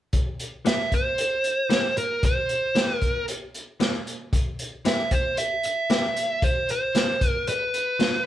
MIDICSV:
0, 0, Header, 1, 4, 480
1, 0, Start_track
1, 0, Tempo, 524017
1, 121, Time_signature, 4, 2, 24, 8
1, 7569, End_track
2, 0, Start_track
2, 0, Title_t, "Lead electric guitar"
2, 0, Program_c, 0, 29
2, 616, Note_on_c, 0, 76, 82
2, 855, Note_off_c, 0, 76, 0
2, 858, Note_on_c, 0, 72, 74
2, 1809, Note_off_c, 0, 72, 0
2, 1812, Note_on_c, 0, 70, 68
2, 2053, Note_off_c, 0, 70, 0
2, 2064, Note_on_c, 0, 72, 62
2, 2696, Note_off_c, 0, 72, 0
2, 2696, Note_on_c, 0, 70, 62
2, 2976, Note_off_c, 0, 70, 0
2, 4461, Note_on_c, 0, 76, 92
2, 4687, Note_on_c, 0, 72, 69
2, 4698, Note_off_c, 0, 76, 0
2, 4908, Note_off_c, 0, 72, 0
2, 4930, Note_on_c, 0, 76, 80
2, 5173, Note_off_c, 0, 76, 0
2, 5183, Note_on_c, 0, 76, 81
2, 5898, Note_on_c, 0, 72, 73
2, 5914, Note_off_c, 0, 76, 0
2, 6137, Note_off_c, 0, 72, 0
2, 6150, Note_on_c, 0, 72, 81
2, 6682, Note_off_c, 0, 72, 0
2, 6682, Note_on_c, 0, 70, 81
2, 6854, Note_off_c, 0, 70, 0
2, 6858, Note_on_c, 0, 71, 62
2, 7534, Note_off_c, 0, 71, 0
2, 7569, End_track
3, 0, Start_track
3, 0, Title_t, "Clean electric guitar"
3, 0, Program_c, 1, 27
3, 595, Note_on_c, 1, 52, 55
3, 600, Note_on_c, 1, 58, 64
3, 608, Note_on_c, 1, 60, 59
3, 610, Note_on_c, 1, 67, 60
3, 743, Note_off_c, 1, 52, 0
3, 745, Note_off_c, 1, 58, 0
3, 749, Note_off_c, 1, 60, 0
3, 750, Note_off_c, 1, 67, 0
3, 1553, Note_on_c, 1, 52, 78
3, 1557, Note_on_c, 1, 58, 77
3, 1566, Note_on_c, 1, 60, 74
3, 1569, Note_on_c, 1, 67, 83
3, 1702, Note_off_c, 1, 52, 0
3, 1704, Note_off_c, 1, 58, 0
3, 1708, Note_off_c, 1, 60, 0
3, 1709, Note_off_c, 1, 67, 0
3, 2521, Note_on_c, 1, 52, 56
3, 2526, Note_on_c, 1, 58, 71
3, 2533, Note_on_c, 1, 60, 63
3, 2540, Note_on_c, 1, 67, 66
3, 2666, Note_off_c, 1, 52, 0
3, 2668, Note_off_c, 1, 58, 0
3, 2672, Note_off_c, 1, 60, 0
3, 2675, Note_off_c, 1, 67, 0
3, 3481, Note_on_c, 1, 52, 74
3, 3486, Note_on_c, 1, 58, 73
3, 3493, Note_on_c, 1, 60, 77
3, 3496, Note_on_c, 1, 67, 81
3, 3626, Note_off_c, 1, 52, 0
3, 3628, Note_off_c, 1, 58, 0
3, 3632, Note_off_c, 1, 60, 0
3, 3633, Note_off_c, 1, 67, 0
3, 4444, Note_on_c, 1, 52, 67
3, 4449, Note_on_c, 1, 58, 68
3, 4453, Note_on_c, 1, 60, 69
3, 4461, Note_on_c, 1, 67, 67
3, 4587, Note_off_c, 1, 52, 0
3, 4590, Note_off_c, 1, 58, 0
3, 4592, Note_off_c, 1, 60, 0
3, 4596, Note_off_c, 1, 67, 0
3, 5404, Note_on_c, 1, 52, 62
3, 5406, Note_on_c, 1, 58, 70
3, 5414, Note_on_c, 1, 60, 72
3, 5418, Note_on_c, 1, 67, 82
3, 5548, Note_off_c, 1, 52, 0
3, 5549, Note_off_c, 1, 58, 0
3, 5553, Note_off_c, 1, 60, 0
3, 5555, Note_off_c, 1, 67, 0
3, 6365, Note_on_c, 1, 52, 62
3, 6372, Note_on_c, 1, 58, 66
3, 6377, Note_on_c, 1, 60, 61
3, 6380, Note_on_c, 1, 67, 69
3, 6508, Note_off_c, 1, 52, 0
3, 6512, Note_off_c, 1, 58, 0
3, 6515, Note_off_c, 1, 60, 0
3, 6516, Note_off_c, 1, 67, 0
3, 7323, Note_on_c, 1, 53, 61
3, 7329, Note_on_c, 1, 59, 61
3, 7335, Note_on_c, 1, 62, 67
3, 7338, Note_on_c, 1, 65, 70
3, 7468, Note_off_c, 1, 53, 0
3, 7471, Note_off_c, 1, 59, 0
3, 7474, Note_off_c, 1, 62, 0
3, 7475, Note_off_c, 1, 65, 0
3, 7569, End_track
4, 0, Start_track
4, 0, Title_t, "Drums"
4, 118, Note_on_c, 9, 42, 64
4, 120, Note_on_c, 9, 36, 89
4, 210, Note_off_c, 9, 42, 0
4, 212, Note_off_c, 9, 36, 0
4, 362, Note_on_c, 9, 42, 50
4, 454, Note_off_c, 9, 42, 0
4, 602, Note_on_c, 9, 42, 71
4, 612, Note_on_c, 9, 38, 92
4, 694, Note_off_c, 9, 42, 0
4, 704, Note_off_c, 9, 38, 0
4, 841, Note_on_c, 9, 36, 68
4, 842, Note_on_c, 9, 42, 49
4, 933, Note_off_c, 9, 36, 0
4, 934, Note_off_c, 9, 42, 0
4, 1082, Note_on_c, 9, 42, 77
4, 1173, Note_off_c, 9, 42, 0
4, 1318, Note_on_c, 9, 42, 51
4, 1410, Note_off_c, 9, 42, 0
4, 1561, Note_on_c, 9, 42, 68
4, 1571, Note_on_c, 9, 38, 87
4, 1652, Note_off_c, 9, 42, 0
4, 1662, Note_off_c, 9, 38, 0
4, 1803, Note_on_c, 9, 42, 57
4, 1895, Note_off_c, 9, 42, 0
4, 2043, Note_on_c, 9, 36, 94
4, 2043, Note_on_c, 9, 42, 68
4, 2135, Note_off_c, 9, 36, 0
4, 2135, Note_off_c, 9, 42, 0
4, 2282, Note_on_c, 9, 42, 52
4, 2373, Note_off_c, 9, 42, 0
4, 2523, Note_on_c, 9, 42, 72
4, 2533, Note_on_c, 9, 38, 93
4, 2615, Note_off_c, 9, 42, 0
4, 2625, Note_off_c, 9, 38, 0
4, 2762, Note_on_c, 9, 42, 47
4, 2764, Note_on_c, 9, 36, 67
4, 2853, Note_off_c, 9, 42, 0
4, 2856, Note_off_c, 9, 36, 0
4, 3004, Note_on_c, 9, 42, 72
4, 3095, Note_off_c, 9, 42, 0
4, 3247, Note_on_c, 9, 42, 48
4, 3339, Note_off_c, 9, 42, 0
4, 3483, Note_on_c, 9, 42, 58
4, 3493, Note_on_c, 9, 38, 89
4, 3574, Note_off_c, 9, 42, 0
4, 3584, Note_off_c, 9, 38, 0
4, 3728, Note_on_c, 9, 42, 52
4, 3820, Note_off_c, 9, 42, 0
4, 3964, Note_on_c, 9, 36, 96
4, 3965, Note_on_c, 9, 42, 68
4, 4055, Note_off_c, 9, 36, 0
4, 4056, Note_off_c, 9, 42, 0
4, 4205, Note_on_c, 9, 42, 51
4, 4296, Note_off_c, 9, 42, 0
4, 4445, Note_on_c, 9, 42, 71
4, 4455, Note_on_c, 9, 38, 92
4, 4536, Note_off_c, 9, 42, 0
4, 4546, Note_off_c, 9, 38, 0
4, 4681, Note_on_c, 9, 42, 54
4, 4683, Note_on_c, 9, 36, 75
4, 4773, Note_off_c, 9, 42, 0
4, 4775, Note_off_c, 9, 36, 0
4, 4921, Note_on_c, 9, 42, 76
4, 5013, Note_off_c, 9, 42, 0
4, 5161, Note_on_c, 9, 42, 54
4, 5253, Note_off_c, 9, 42, 0
4, 5403, Note_on_c, 9, 42, 69
4, 5413, Note_on_c, 9, 38, 92
4, 5495, Note_off_c, 9, 42, 0
4, 5505, Note_off_c, 9, 38, 0
4, 5648, Note_on_c, 9, 42, 59
4, 5739, Note_off_c, 9, 42, 0
4, 5884, Note_on_c, 9, 36, 97
4, 5884, Note_on_c, 9, 42, 71
4, 5975, Note_off_c, 9, 36, 0
4, 5976, Note_off_c, 9, 42, 0
4, 6125, Note_on_c, 9, 42, 53
4, 6217, Note_off_c, 9, 42, 0
4, 6365, Note_on_c, 9, 42, 76
4, 6375, Note_on_c, 9, 38, 92
4, 6457, Note_off_c, 9, 42, 0
4, 6467, Note_off_c, 9, 38, 0
4, 6606, Note_on_c, 9, 42, 55
4, 6607, Note_on_c, 9, 36, 75
4, 6698, Note_off_c, 9, 36, 0
4, 6698, Note_off_c, 9, 42, 0
4, 6846, Note_on_c, 9, 42, 72
4, 6938, Note_off_c, 9, 42, 0
4, 7088, Note_on_c, 9, 42, 51
4, 7180, Note_off_c, 9, 42, 0
4, 7326, Note_on_c, 9, 42, 60
4, 7336, Note_on_c, 9, 38, 89
4, 7417, Note_off_c, 9, 42, 0
4, 7427, Note_off_c, 9, 38, 0
4, 7569, End_track
0, 0, End_of_file